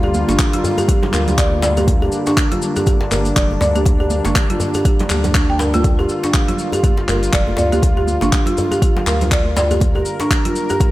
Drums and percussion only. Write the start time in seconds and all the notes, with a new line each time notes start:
0.03 djembe tone
0.14 muted conga, high conga, cabasa
0.28 closed hi-hat, djembe slap, high conga, cabasa
0.39 kick, clap, closed hi-hat, muted conga, cabasa
0.53 closed hi-hat, low conga
0.64 djembe bass, cabasa
0.78 closed hi-hat, muted conga, djembe tone, cabasa
0.88 kick, closed hi-hat, cabasa
1.03 djembe slap, muted conga, low conga
1.13 clap, djembe slap, high conga, cabasa
1.28 closed hi-hat, muted conga, low conga, cabasa
1.38 kick, clap, closed hi-hat, cabasa
1.52 high conga
1.62 djembe slap, muted conga, high conga, cabasa
1.77 closed hi-hat, djembe tone, high conga, cabasa
1.88 kick, closed hi-hat, muted conga, djembe tone, cabasa
2.02 djembe tone
2.12 muted conga, cabasa
2.26 closed hi-hat, djembe slap, cabasa
2.37 kick, clap, closed hi-hat, muted conga, cabasa
2.52 closed hi-hat, low conga
2.62 cabasa
2.76 closed hi-hat, muted conga, djembe tone, cabasa
2.86 kick, closed hi-hat, high conga, djembe tone, cabasa
3.01 djembe slap, muted conga
3.11 clap, high conga, djembe bass, cabasa
3.25 closed hi-hat, muted conga, cabasa
3.36 kick, clap, closed hi-hat, low conga, cabasa
3.51 djembe tone, high conga
3.61 djembe slap, muted conga, djembe bass, cabasa
3.75 closed hi-hat, high conga, cabasa
3.86 kick, closed hi-hat, muted conga, djembe tone, cabasa
4.00 djembe tone
4.10 muted conga, high conga, cabasa
4.25 closed hi-hat, djembe slap, high conga, cabasa
4.35 kick, clap, closed hi-hat, muted conga, cabasa
4.50 closed hi-hat, low conga
4.60 djembe bass, cabasa
4.74 closed hi-hat, muted conga, djembe tone, cabasa
4.85 kick, closed hi-hat, cabasa
4.99 closed hi-hat, djembe slap, muted conga, low conga
5.10 clap, djembe slap, high conga, cabasa
5.24 closed hi-hat, muted conga, djembe tone, low conga, cabasa
5.35 kick, clap, closed hi-hat, cabasa
5.50 high conga
5.59 djembe slap, muted conga, high conga, cabasa
5.74 closed hi-hat, djembe tone, high conga, cabasa
5.84 kick, closed hi-hat, muted conga, djembe tone, cabasa
5.99 djembe tone
6.09 muted conga, cabasa
6.23 closed hi-hat, djembe slap, cabasa
6.34 kick, clap, closed hi-hat, muted conga, cabasa
6.48 closed hi-hat, low conga
6.59 cabasa
6.72 closed hi-hat, muted conga, djembe tone, cabasa
6.83 kick, closed hi-hat, high conga, djembe tone, cabasa
6.97 muted conga, djembe slap
7.08 clap, high conga, djembe bass, cabasa
7.23 closed hi-hat, muted conga, cabasa
7.33 kick, clap, closed hi-hat, low conga, cabasa
7.47 djembe tone, high conga
7.57 djembe slap, muted conga, djembe bass, cabasa
7.72 closed hi-hat, high conga, cabasa
7.82 kick, closed hi-hat, muted conga, djembe tone, cabasa
7.97 djembe tone
8.07 muted conga, high conga, cabasa
8.21 closed hi-hat, djembe slap, high conga, cabasa
8.32 kick, clap, closed hi-hat, muted conga, cabasa
8.46 closed hi-hat, low conga
8.57 djembe bass, cabasa
8.71 closed hi-hat, muted conga, djembe tone, cabasa
8.82 kick, closed hi-hat, cabasa
8.96 muted conga, djembe slap, low conga
9.06 clap, djembe slap, high conga, cabasa
9.21 closed hi-hat, muted conga, low conga, cabasa
9.31 kick, clap, closed hi-hat, cabasa
9.45 high conga
9.57 muted conga, djembe slap, high conga, cabasa
9.71 closed hi-hat, high conga, djembe tone, cabasa
9.80 kick, closed hi-hat, muted conga, djembe tone, cabasa
9.95 djembe tone
10.05 muted conga, cabasa
10.20 closed hi-hat, djembe slap, cabasa
10.31 kick, clap, closed hi-hat, muted conga, cabasa
10.45 closed hi-hat, low conga
10.56 cabasa
10.69 closed hi-hat, muted conga, djembe tone, cabasa
10.80 kick, closed hi-hat, djembe tone, high conga, cabasa